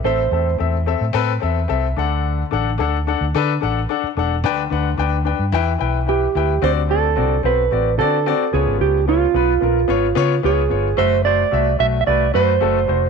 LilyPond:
<<
  \new Staff \with { instrumentName = "Clean electric guitar" } { \time 4/4 \key d \mixolydian \tempo 4 = 110 c''4 r2. | r1 | r2. g'4 | c''8 a'4 b'4 a'4 gis'8 |
g'8 eis'2~ eis'8 gis'4 | c''8 d''4 e''16. e''32 d''8 c''4. | }
  \new Staff \with { instrumentName = "Grand piano" } { \time 4/4 \key d \mixolydian <c' a' e''>8 <c' a' e''>8 <c' a' e''>8 <c' a' e''>8 <c' a' b'>8 <c' a' e''>8 <c' a' e''>8 <d' a' fis''>8~ | <d' a' fis''>8 <d' a' fis''>8 <d' a' fis''>8 <d' a' fis''>8 <d' a' b'>8 <d' a' fis''>8 <d' a' fis''>8 <d' a' fis''>8 | <d' b' g''>8 <d' b' fis''>8 <d' b' g''>8 <d' b' g''>8 <e' b' g''>8 <e' b' g''>8 <e' b' g''>8 <e' b' g''>8 | <c' fis' d''>8 <c' fis' d''>8 <c' fis' d''>8 <c' fis' c''>8 <c' fis' d''>8 <c' fis' d''>8 <c' fis' d''>8 <b eis' cis''>8~ |
<b eis' cis''>8 <b eis' cis''>8 <b eis' b'>8 <b eis' ais'>8 <b eis' cis''>8 <b eis' cis''>8 <b eis' cis''>8 <b eis' cis''>8 | <a fis' e''>8 <a fis' c''>8 <a fis' e''>8 <a fis' e''>8 <a fis' b'>8 <a fis' b'>8 <a fis' a'>8 <a fis' c''>8 | }
  \new Staff \with { instrumentName = "Grand piano" } { \clef bass \time 4/4 \key d \mixolydian a,4. r2 d8~ | d4 r2. | d4. r8 e4. r8 | d4. r2 cis8~ |
cis4 r2. | r1 | }
  \new Staff \with { instrumentName = "Fingered electric bass" } { \clef bass \time 4/4 \key d \mixolydian a,,8 e,8 e,8. a,16 a,8 e,8 c,8 d,8~ | d,8 a,,8 d,8. d,16 d8 a,,8 r8 e,,8 | d,8 d,8 d,8. g,16 e,8 b,,4 d,8 | d,4 c,8 b,,8 a,,8 d8. r16 cis,16 gis,,16 |
cis,4 b,,8 ais,,8 gis,,8 cis8 cis,8 g,,8 | fis,,4 c,8 b,,8 c,8 fis,8 fis,,8 f,,8 | }
>>